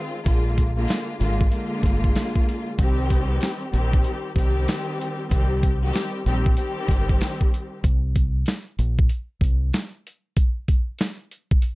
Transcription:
Already playing: string section D#3 G#3 C4 F4
0.25 fingered electric bass A#1, string section D3 G#3 A#3 F4, kick, closed hi-hat
0.58 kick, closed hi-hat
0.77 string section D3 G#3 A#3 F4
0.88 snare, closed hi-hat
1.21 fingered electric bass G#1, string section D3 G#3 A#3 F4, closed hi-hat
1.41 kick
1.51 string section D3 G#3 A#3 F4, closed hi-hat
1.83 fingered electric bass G1, kick, snare, closed hi-hat
2.04 kick
2.15 snare, closed hi-hat
2.35 kick
2.49 closed hi-hat
2.78 fingered electric bass C2, string section D#3 G3 C4 G4, kick, closed hi-hat
3.10 kick, closed hi-hat
3.41 snare, closed hi-hat
3.73 fingered electric bass A#1, string section D#3 G3 C4 G4, closed hi-hat
3.93 kick
4.04 closed hi-hat
4.36 fingered electric bass C2, string section D#3 G3 C4 G4, kick, closed hi-hat
4.68 snare, closed hi-hat
5.01 closed hi-hat
5.30 fingered electric bass C2, string section D#3 G3 C4 G4, kick, closed hi-hat
5.63 kick, closed hi-hat
5.83 string section D#3 G3 C4 G4
5.93 snare, closed hi-hat
6.26 fingered electric bass A#1, string section D#3 G3 C4 G4, closed hi-hat
6.46 kick
6.57 string section D#3 G3 C4 G4, closed hi-hat
6.88 fingered electric bass G1, kick, snare, closed hi-hat
7.09 kick
7.21 snare, closed hi-hat
7.41 kick
7.54 closed hi-hat
7.84 fingered electric bass C2, kick, closed hi-hat
8.16 kick, closed hi-hat
8.46 snare, closed hi-hat
8.79 fingered electric bass A#1, closed hi-hat
8.99 kick
9.09 closed hi-hat
9.41 fingered electric bass C2, kick, closed hi-hat
9.73 snare, closed hi-hat
10.07 closed hi-hat
10.37 kick, closed hi-hat
10.68 kick, closed hi-hat
10.99 snare, closed hi-hat
11.31 closed hi-hat
11.51 kick
11.62 closed hi-hat

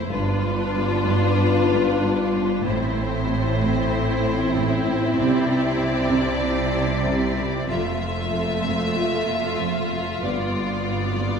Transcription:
0.11 double bass section G1, cello section G2, french horn section B3 F4, viola section D4, violin section F4 B4
0.44 cello section G2
0.75 cello section G2
1.07 cello section G2
1.39 cello section G2
1.70 cello section G3
2.02 cello section G2
2.33 cello section G2
2.64 double bass section A1, cello section A2, viola section C4, french horn section C4 E4, violin section E4 C5
2.97 cello section A2
3.28 cello section A2
3.60 cello section A2
3.91 cello section A2
4.23 cello section A3
4.54 cello section A2
4.86 cello section A2
5.16 double bass section C2, cello section C3, french horn section D4, violin section D5
5.49 cello section C3
5.80 cello section C3
6.12 cello section C3
6.43 cello section C3
6.75 cello section C4
7.06 cello section C3
7.38 cello section C3
7.69 double bass section F1, cello section F2, french horn section A3 F4, viola section A3, violin section F4 E5
8.01 cello section F2
8.33 cello section F2
8.64 cello section F2
8.95 cello section F2, french horn section A3 F4
9.27 cello section F3
9.59 cello section F2
9.90 cello section F2
10.22 double bass section G1, cello section G2, viola section B3, french horn section B3 F4, violin section D5
10.53 cello section G2
10.85 cello section G2
11.17 cello section G2

